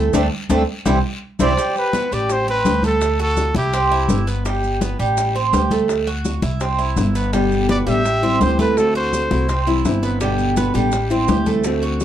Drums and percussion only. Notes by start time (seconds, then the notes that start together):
0.13 low bongo, high conga, long guiro, maracas
0.49 low bongo, high conga, maracas
0.86 low bongo, high conga, maracas
1.39 low bongo, high conga, long guiro, maracas
1.57 high bongo, high conga, long guiro, maracas
1.76 high conga, maracas
1.93 high bongo, high conga, short guiro, maracas
2.12 high bongo, high conga, short guiro, maracas
2.29 high bongo, high conga, long guiro, maracas
2.47 high bongo, high conga, maracas
2.65 high bongo, low bongo, high conga, short guiro, maracas
2.83 high bongo, high conga, short guiro, maracas
3.01 high bongo, high conga, long guiro, maracas
3.19 high conga, maracas
3.37 high bongo, high conga, short guiro, maracas
3.55 high bongo, high conga, short guiro, maracas
3.72 high bongo, high conga, long guiro, maracas
3.91 high bongo, high conga, maracas
4.09 high bongo, low bongo, high conga, short guiro, maracas
4.27 high bongo, high conga, short guiro, maracas
4.45 high bongo, high conga, long guiro, maracas
4.64 high conga, maracas
4.81 high bongo, high conga, short guiro, maracas
4.99 high bongo, high conga, short guiro, maracas
5.17 high bongo, high conga, long guiro, maracas
5.35 high bongo, high conga, maracas
5.53 high bongo, low bongo, high conga, short guiro, maracas
5.71 high bongo, high conga, short guiro, maracas
5.88 high bongo, high conga, long guiro, maracas
6.07 high conga, maracas
6.25 high bongo, high conga, short guiro, maracas
6.42 high bongo, high conga, short guiro, maracas
6.60 high bongo, high conga, long guiro, maracas
6.79 high bongo, high conga, maracas
6.96 high bongo, low bongo, high conga, short guiro, maracas
7.15 high bongo, short guiro, maracas
7.33 high bongo, high conga, long guiro, maracas
7.52 high conga, maracas
7.69 high bongo, high conga, short guiro, maracas
7.87 high conga, short guiro, maracas
8.05 high bongo, high conga, long guiro, maracas
8.23 high bongo, high conga, maracas
8.41 high bongo, low bongo, high conga, short guiro, maracas
8.59 high bongo, high conga, short guiro, maracas
8.77 high bongo, high conga, long guiro, maracas
8.95 high conga, maracas
9.13 high bongo, high conga, short guiro, maracas
9.31 high bongo, high conga, short guiro, maracas
9.49 high bongo, high conga, long guiro, maracas
9.67 high bongo, high conga, maracas
9.85 high bongo, low bongo, high conga, short guiro, maracas
10.03 high bongo, short guiro, maracas
10.21 high bongo, high conga, long guiro, maracas
10.38 high conga, maracas
10.56 high bongo, high conga, short guiro, maracas
10.74 high bongo, high conga, short guiro, maracas
10.92 high bongo, high conga, long guiro, maracas
11.10 high bongo, high conga, maracas
11.28 high bongo, low bongo, high conga, short guiro, maracas
11.46 high bongo, high conga, short guiro, maracas
11.64 high bongo, high conga, long guiro, maracas
11.82 high conga, maracas
12.00 high bongo, high conga, short guiro, maracas